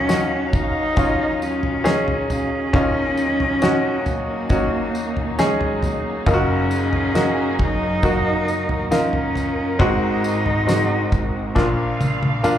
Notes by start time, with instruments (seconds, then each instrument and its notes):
Already playing: grand piano D#2 D#3 C#4 D#4 F#4, string section D#2 D#3 F#3 C#4 F5, cello C#4
0.08 grand piano C#4 D#4 F#4, snare, tambourine
0.53 cello D#4, kick, floor tom, tambourine
0.96 grand piano C#4 D#4 F4, kick, floor tom, tambourine
1.42 cello C#4, tambourine
1.63 floor tom
1.84 grand piano C#4 D#4 G#4, snare, tambourine
2.08 floor tom
2.30 cello C#4, floor tom, tambourine
2.73 grand piano D#2 D#3 C#4 D#4 F4, string section D#4, kick, floor tom, tambourine
3.17 tambourine
3.40 floor tom
3.62 grand piano C#4 D#4 F#4, snare, tambourine
4.06 cello A#3, floor tom, tambourine
4.49 grand piano C#4 D#4 F#4, kick, floor tom, tambourine
4.95 tambourine
5.17 floor tom
5.39 cello G#3, grand piano C#4 D#4 G#4, snare, tambourine
5.61 floor tom
5.83 cello A#3, floor tom, tambourine
6.26 grand piano F#1 F#2 A#3 D#4 F4, string section F#2 F#3 A#3 G#4, cello C#4, kick, floor tom, tambourine
6.34 grand piano F#4
6.71 tambourine
6.93 floor tom
7.14 grand piano A#3 D#4 F#4, snare, tambourine
7.59 cello D#4, kick, floor tom
8.02 grand piano A#3 D#4 F#4, string section A#4, kick, floor tom, tambourine
8.48 tambourine
8.69 floor tom
8.91 grand piano A#3 D#4 F4, cello C#4, snare, tambourine
9.13 floor tom
9.35 floor tom, tambourine
9.79 grand piano G#1 G#2 G#3 C4 F#4, string section G#2 G#3 C4 F#4, cello D#4, kick, floor tom
10.24 tambourine
10.46 floor tom
10.67 grand piano G#3 C4 F#4, snare, tambourine
11.12 kick, floor tom, tambourine
11.55 grand piano A#1 A#2 A#3 D4 F4, string section A#2 A#3 D4 F4 F5, kick, snare, tambourine
12.01 high tom, tambourine
12.23 high tom
12.43 grand piano A#3 D4 F4, mid tom, tambourine